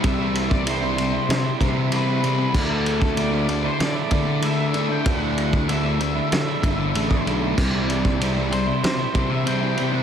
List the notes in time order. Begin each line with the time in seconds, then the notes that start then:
0.02 C2 C3 E3 G3 C4 E4 E5, kick, ride
0.19 G3 C4 E4
0.35 ride
0.50 G3 C4 D5, kick
0.65 C3 E3 G3 C4 E4 C5, ride
0.82 G3 C4 E4
0.97 C3 G3 C4, muted overdriven electric guitar stroke, ride
1.12 G3 C4 E4, muted distorted electric guitar stroke
1.29 C3, snare, ride
1.44 G3 C4 E4
1.59 C3 E3 G3 C4 E4, kick, ride
1.76 muted distorted electric guitar stroke
1.91 C3 E3 G3 C4 E4, ride
1.95 B4
2.07 G3 C4 E4
2.22 C3 E3 G3 C4 E4, ride
2.38 G3 C4 E4
2.54 D2 D3 A3 D4 E4 A4, kick, crash
2.69 A3 D4 E4
2.86 ride
3.00 A3 D4, kick
3.16 D3 A3 D4 E4 D5, ride
3.32 A3 D4 E4
3.47 D3 A3 D4, muted overdriven electric guitar stroke, ride
3.64 A3 D4 E4 C5, muted distorted electric guitar stroke
3.80 D3 D5, snare, ride
3.95 A3 D4 E4
4.11 D3 A3 D4 E4, kick, ride
4.27 muted distorted electric guitar stroke
4.42 D3 A3 D4 E4 E5, ride
4.58 A3 D4 E4
4.74 D3 A3 D4 E4, ride
4.89 A3 D4 E4 G5
5.05 D2 D3 A3 D4 E4 G5, kick, ride
5.17 F#5
5.22 A3 D4 E4
5.38 ride
5.51 A3 D4, kick
5.68 D3 A3 D4 E4 E5, ride
5.85 A3 D4 E4
5.99 D3 A3 D4, muted overdriven electric guitar stroke, ride
6.15 A3 D4 E4, muted distorted electric guitar stroke
6.32 D3, snare, ride
6.47 A3 D4 E4
6.63 G1 D3 A3 D4 E4, kick, ride
6.78 muted distorted electric guitar stroke
6.94 A1 D3 A3 D4 E4, ride
7.09 A3 D4 E4, kick
7.26 B1 D3 A3 D4 E4, ride
7.42 A3 D4 E4
7.58 C2 C3 E3 G3 C4 E4, kick, crash
7.74 G3 C4 E4
7.90 ride
8.03 G3 C4, kick
8.20 C3 E3 G3 C4 E4, ride
8.36 G3 C4 E4
8.51 C3 G3 C4 C5, muted overdriven electric guitar stroke, ride
8.67 G3 C4 E4, muted distorted electric guitar stroke
8.84 C3 C5, snare, ride
8.98 G3 C4 E4
9.13 C3 E3 G3 C4 E4, kick, ride
9.30 E5, muted distorted electric guitar stroke
9.44 C3 E3 G3 C4 E4 G5, ride
9.61 G3 C4 E4
9.77 C3 E3 G3 C4 E4, ride
9.91 G3 C4 E4 F#5